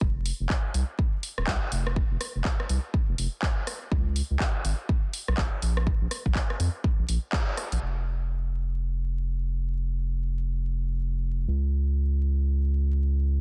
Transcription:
0.01 F1, kick
0.26 open hi-hat
0.40 F1
0.50 kick, clap
0.74 C2, open hi-hat
0.99 kick
1.23 open hi-hat
1.38 D#1, cross-stick
1.47 C2, kick, clap
1.72 F1, open hi-hat
1.87 cross-stick
1.96 kick
2.11 F1
2.21 cross-stick, open hi-hat
2.35 F1
2.45 kick, clap
2.60 cross-stick
2.69 C2, open hi-hat
2.94 kick
3.09 F1
3.18 F1, open hi-hat
3.42 kick, clap
3.67 cross-stick, open hi-hat
3.92 C#2, kick
4.16 open hi-hat
4.31 C#2
4.40 kick, clap
4.65 G#1, open hi-hat
4.89 kick
5.13 open hi-hat
5.28 B1, cross-stick
5.37 G#1, kick, clap
5.62 A#1, open hi-hat
5.77 cross-stick
5.87 kick
6.01 A#1
6.11 cross-stick, open hi-hat
6.26 A#1, kick
6.35 kick, clap
6.50 cross-stick
6.60 F2, open hi-hat
6.84 kick
6.99 A#1
7.09 A#1, open hi-hat
7.33 kick, clap
7.57 cross-stick, open hi-hat
7.72 A#1, open hi-hat
7.82 F1
11.48 C#2

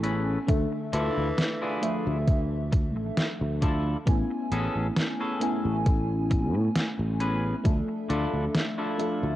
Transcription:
Already playing: A1 A3 B3 C#4 E4 G#5
0.03 C#4 G#4 A4 B4, closed hi-hat
0.47 D2 D3 A3 D4 A4 E5, kick, closed hi-hat
0.72 muted clean electric guitar stroke
0.93 D2 E3 D4 E4 F4 A4, closed hi-hat
1.17 D2
1.38 snare, closed hi-hat
1.62 D4 E4 F4 G#4
1.81 F3 A3 D4 E5, closed hi-hat
2.07 D2
2.28 kick, closed hi-hat
2.72 muted clean electric guitar stroke, kick, closed hi-hat
2.96 A1, muted clean electric guitar stroke
3.17 snare, closed hi-hat
3.41 D2
3.62 D4 E4 F4 A4, kick, closed hi-hat
4.05 A1 A3 B3 C#4 E4 G#5, kick, closed hi-hat
4.30 muted clean electric guitar stroke
4.51 A1 B3 C#4 G#4 A4, closed hi-hat
4.75 A1
4.96 snare, closed hi-hat
5.20 B3 C#4 G#4 A4
5.40 A3 B3 C#4 E4 G#5, closed hi-hat
5.65 A1
5.86 kick, closed hi-hat
6.31 muted clean electric guitar stroke, kick, closed hi-hat
6.54 A2, muted clean electric guitar stroke
6.75 snare, closed hi-hat
6.99 A1
7.20 B3 C#4 G#4 B4, closed hi-hat
7.64 D2 F3 A3 D4 A4 E5, kick, closed hi-hat
7.89 muted clean electric guitar stroke
8.09 D2 D4 E4 F4 A4, closed hi-hat
8.33 D2
8.55 snare, closed hi-hat
8.78 D4 E4 F4 A4
8.98 F3 A3 D4 A4 E5, closed hi-hat
9.23 D2

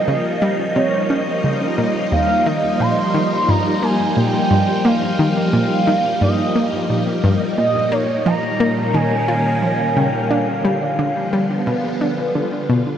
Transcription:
Already playing: F3 G3 A#3 D#4 D#5 G6
0.08 C#3
0.42 G3
0.76 C3 C#5
1.10 C#4
1.44 C#3
1.78 A#2
2.12 D#2 F5
2.46 D#3 D#5
2.80 A#2 C6
3.14 D#3
3.49 G2 A#5
3.83 A#3 G#5
4.17 A#2 G5
4.51 G2
4.85 A#3 F5
5.19 D#3
5.53 A#2
5.87 D#3
6.21 G2 D#5
6.55 A#3
6.90 A#2
7.24 G2
7.58 A#2 D#5
7.92 A#3 C#5
8.26 F3 A#5
8.40 D#3
8.60 A#3
8.76 A#3 C#4
8.81 F4
8.94 D#3 G#5
9.28 F4
9.62 F3
9.96 C#3 G5
10.31 D3 D4 F5
10.64 F3 G3
10.99 D3
11.33 G3
11.38 B3
11.67 B2
12.01 D4
12.35 D3
12.69 B2

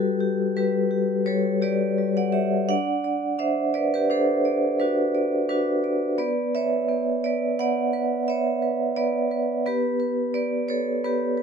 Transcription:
Already playing: G3 F#4 G4 A4 B4
0.20 G4
0.57 G3 G4 B4
0.91 G4
1.26 G3 A4 C#5
1.62 G4 B4 D5
1.98 G3
2.17 D5 F#5
2.32 G4 C#5 E5
2.69 D4 D5 F#5
3.04 D5
3.38 D4 C5 E5
3.74 B4 D5
3.94 G4 B4
4.10 D4 A4 C5
4.45 D5
4.80 D4 F#4 B4
5.15 D5
5.49 D4 F#4 B4
5.84 D5
6.18 B3 B4 D5
6.55 B4 C#5 E5
6.89 B3
7.24 B4 D5
7.59 B3 D5 F#5
7.93 B4
8.28 B3 C#5 E5
8.62 B4
8.96 B3 B4 D5
9.31 B4
9.66 B3 G4 B4
10.00 B4
10.34 B3 B4 D5
10.68 A4 B4 C#5
11.04 B3 G4 B4
11.38 B4

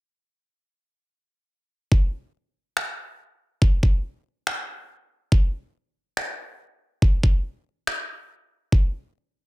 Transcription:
1.92 kick
2.77 finger snap
3.62 kick
3.83 kick
4.47 finger snap
5.32 kick
6.17 finger snap
7.02 kick
7.23 kick
7.87 finger snap
8.72 kick

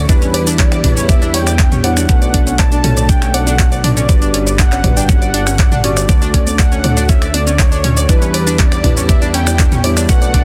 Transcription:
0.09 E2 D3 G3 B3 D4 E4 B4, kick, closed hi-hat, shaker
0.22 C#4, closed hi-hat, shaker
0.34 D5, open hi-hat, high bongo
0.47 D4, closed hi-hat, shaker
0.59 C#4 D5, kick, clap, closed hi-hat, shaker
0.72 D5, finger snap, closed hi-hat, high bongo, shaker
0.84 G3 D4 E4 B4, kick, mid tom, open hi-hat, high conga
0.93 C#4 C#5, closed hi-hat, shaker
1.09 D5 E5, kick, closed hi-hat, high bongo, shaker
1.22 D4, closed hi-hat, shaker
1.34 C#4 G5, open hi-hat
1.47 D5, finger snap, closed hi-hat, high bongo, shaker
1.59 D4, kick, clap, closed hi-hat, shaker
1.72 C#4, closed hi-hat, mid tom, shaker
1.84 G3 D4 E4 C#5 D5 F#5, open hi-hat, high bongo
1.97 D4, finger snap, closed hi-hat, shaker
2.09 B1 A3 C#4 D4 F#4 B4, kick, closed hi-hat, shaker
2.22 D5, closed hi-hat, high bongo, shaker
2.34 D4, kick, open hi-hat
2.47 C#4, closed hi-hat, high conga, shaker
2.59 D5 A5, kick, clap, closed hi-hat, high bongo, shaker
2.72 D4, closed hi-hat, shaker
2.84 A3 C#4 D4 F#4 C#5, mid tom, open hi-hat, high conga
2.97 D5, closed hi-hat, high bongo, shaker
3.09 D4 G5, kick, closed hi-hat, shaker
3.22 C#4, finger snap, closed hi-hat, shaker
3.34 D5 F#5, open hi-hat, high bongo, high conga
3.47 D4, closed hi-hat, high conga, shaker
3.59 C#4, kick, clap, closed hi-hat, shaker
3.72 D5, closed hi-hat, high bongo, shaker
3.84 D4 D5, mid tom, open hi-hat
3.97 C#4, closed hi-hat, shaker
4.09 G1 G3 B3 D4 F#4 B4 D5, kick, closed hi-hat, high bongo, shaker
4.22 D4, closed hi-hat, shaker
4.34 C#4, open hi-hat
4.47 D5, closed hi-hat, high bongo, shaker
4.59 D4 F#5, kick, clap, closed hi-hat, shaker
4.72 C#4, finger snap, clap, closed hi-hat, shaker
4.84 G3 D4 F#4 B4 D5, kick, mid tom, open hi-hat, high bongo, high conga
4.97 D4 G5, closed hi-hat, shaker
5.09 C#4 F#5, kick, closed hi-hat, shaker
5.22 D5, closed hi-hat, high bongo, shaker
5.34 D4, open hi-hat
5.47 C#4, finger snap, closed hi-hat, shaker
5.59 D5, kick, clap, closed hi-hat, high bongo, shaker
5.72 D4, closed hi-hat, mid tom, shaker
5.84 G3 C#4 D4 F#4 D5, open hi-hat
5.97 D5, finger snap, closed hi-hat, high bongo, shaker
6.09 D2 A3 F#4 D5, kick, closed hi-hat, high bongo, shaker
6.22 D4, closed hi-hat, shaker
6.34 C#4, kick, open hi-hat
6.47 D5, closed hi-hat, high bongo, high conga, shaker
6.59 D4 F#5, kick, clap, closed hi-hat, shaker
6.72 C#4, closed hi-hat, shaker
6.84 A3 D4 F#4 C#5 D5, mid tom, open hi-hat, high bongo, high conga
6.97 D4, closed hi-hat, shaker
7.09 C#4 E5, kick, closed hi-hat, shaker
7.22 D5, finger snap, closed hi-hat, high bongo, shaker
7.34 D4 D5, open hi-hat, high conga
7.47 C#4, closed hi-hat, high conga, shaker
7.59 C#5 D5, kick, clap, closed hi-hat, high bongo, shaker
7.72 D4, closed hi-hat, shaker
7.84 C#4, mid tom, open hi-hat
7.97 D5, closed hi-hat, high bongo, shaker
8.09 E2 G3 B3 D4 E4 B4, kick, closed hi-hat, shaker
8.22 C#4, closed hi-hat, shaker
8.34 D5, open hi-hat, high bongo
8.47 D4, closed hi-hat, shaker
8.59 C#4 D5, kick, clap, closed hi-hat, shaker
8.72 D5, finger snap, closed hi-hat, high bongo, shaker
8.84 G3 D4 E4 B4, kick, mid tom, open hi-hat, high conga
8.97 C#4, closed hi-hat, shaker
9.09 D5 E5, kick, closed hi-hat, high bongo, shaker
9.22 D4, closed hi-hat, shaker
9.34 C#4 G5, open hi-hat
9.47 D5, finger snap, closed hi-hat, high bongo, shaker
9.59 D4, kick, clap, closed hi-hat, shaker
9.72 C#4, closed hi-hat, mid tom, shaker
9.84 G3 D4 E4 C#5 D5, open hi-hat, high bongo
9.97 D4, finger snap, closed hi-hat, shaker
10.09 B1 A3 C#4 D4 F#4 B4 F#5, kick, closed hi-hat, shaker
10.22 D5, closed hi-hat, high bongo, shaker
10.34 D4, kick, open hi-hat

